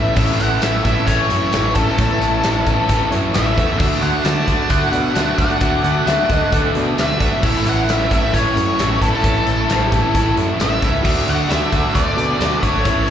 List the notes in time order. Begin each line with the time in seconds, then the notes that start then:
Already playing: A1 A2 E3 A3 A4 C#5 E5
0.15 A1 A2 E3 A3 C#4 E4 A4 C#5 E5, kick, crash
0.40 A1 F#5, closed hi-hat
0.61 A1 A2 E3 A3 C#4 E4 A4 E5, snare, closed hi-hat, tambourine
0.84 A1 A2 E3 A3 C#4 E4 A4 E5, kick, closed hi-hat
1.06 A1 A2 E3 A3 C#4 E4 A4 C#5, kick, closed hi-hat
1.30 F#2 C#4 E4 A4 C#5, closed hi-hat
1.51 A1 A2 E3 A3 C#4 E4 A4, snare, closed hi-hat, tambourine
1.74 A1 A2 E3 A3 C#4 E4 A4, kick, closed hi-hat
1.96 A1 A2 E3 A3 C#4 E4 A4 C#5, kick, closed hi-hat
2.21 A1, closed hi-hat
2.43 A1 A2 E3 A3 C#4 E4 A4, snare, closed hi-hat, tambourine
2.65 A1 A2 E3 A3 C#4 E4 A4, kick, closed hi-hat
2.88 A1 A2 E3 A3 C#4 E4 A4, kick, closed hi-hat
3.10 F#2 C#4 E4 A4 C#5, closed hi-hat
3.33 A1 A2 E3 A3 C#4 E4 A4 E5, snare, closed hi-hat, tambourine
3.55 E2 A2 E3 A3 C#4 E4 A4, kick, closed hi-hat
3.78 D2 D3 A3 D4 F#4 A4 D5 E5, kick, crash
4.02 D2 F#5, closed hi-hat
4.23 D2 D3 A3 D4 F#4 A5, snare, closed hi-hat, tambourine
4.46 D2 D3 A3 D4 F#4, kick, closed hi-hat
4.68 D2 D3 A3 D4 F#4 F#5, kick, closed hi-hat
4.92 B2 D4 F#4 A4 D5, closed hi-hat
5.14 D2 D3 A3 D4 F#4, snare, closed hi-hat, tambourine
5.36 D2 D3 A3 D4 F#4 F#5, kick, closed hi-hat
5.59 D2 D3 A3 D4 F#4 A4 D5, kick, closed hi-hat
5.83 D2, closed hi-hat
6.06 D2 D3 A3 D4 F#4 E5, snare, closed hi-hat, tambourine
6.28 D2 D3 A3 D4 F#4, kick, closed hi-hat
6.32 D#5
6.50 D2 D3 A3 D4 F#4, kick, closed hi-hat
6.54 A4
6.75 B2 D4 F#4 A4 D5, closed hi-hat
6.96 D2 D3 A3 D4 F#4, snare, closed hi-hat, tambourine
7.01 E5
7.18 B1 D3 A3 D4 F#4, kick, closed hi-hat
7.41 A1 A2 E3 A3 C#4 E4 A4 C#5, kick, crash
7.46 E5
7.66 A1 F#5, closed hi-hat
7.87 A1 A2 E3 A3 C#4 E4 E5, snare, closed hi-hat, tambourine
8.10 A1 A2 E3 A3 C#4 E4 E5, kick, closed hi-hat
8.31 A1 A2 E3 A3 C#4 E4 C#5, kick, closed hi-hat
8.56 F#2 C#4 E4 A4 C#5, closed hi-hat
8.76 A1 A2 E3 A3 C#4 E4, snare, closed hi-hat, tambourine
8.99 A1 A2 E3 A3 C#4 E4 A4, kick, closed hi-hat
9.22 A1 A2 E3 A3 C#4 E4 A4, kick, closed hi-hat
9.26 C#5
9.47 A1, closed hi-hat
9.67 A1 A2 E3 A3 C#4 E4, snare, closed hi-hat, tambourine
9.72 C5
9.87 A2 G4
9.91 A1 E3 A3 C#4 E4, kick, closed hi-hat
10.02 E4
10.12 A1 A2 E3 A3 C#4 E4, kick, closed hi-hat
10.17 E4
10.37 F#2 C#4 E4 A4 C#5, closed hi-hat
10.58 A1 A2 E3 A3 C#4 E4 E5, snare, closed hi-hat, tambourine
10.81 C#2 A2 E3 A3 C#4 E4, kick, closed hi-hat
11.03 D2 D3 A3 D4 F#4 A4 D5 E5, kick, crash
11.28 D2 F#5, closed hi-hat
11.49 D2 D3 A3 D4 F#4 E5, snare, closed hi-hat, tambourine
11.71 D2 D3 A3 D4 F#4, kick, closed hi-hat
11.94 D2 D3 A3 D4 F#4 D5, kick, closed hi-hat
12.16 B2 D4 F#4 A4 D5, closed hi-hat
12.38 D2 D3 A3 D4 F#4, snare, closed hi-hat, tambourine
12.60 G#1 D3 A3 D4 F#4 C#5, kick, closed hi-hat
12.82 A1 A2 E3 A3 C#4 E4 A4 C#5, kick, closed hi-hat